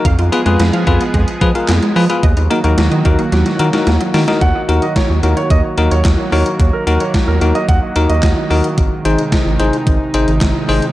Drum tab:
HH |xxxxxxxxxxxxxxox|xxxxxxxxxxxxxxox|x-xxx-xxx-xxx-ox|x-xxx-xxx-xxx-ox|
CP |------------x---|----------------|------------x---|------------x---|
SD |----o-------o---|----o---oo-oo-oo|----o-------o---|----o-------o---|
BD |o-----o-o-o-----|o-----o---------|o---o---o---o---|o---o---o---o---|

HH |x-xxx-xxx-xxx-ox|
CP |------------x---|
SD |----o-------o---|
BD |o---o---o---o---|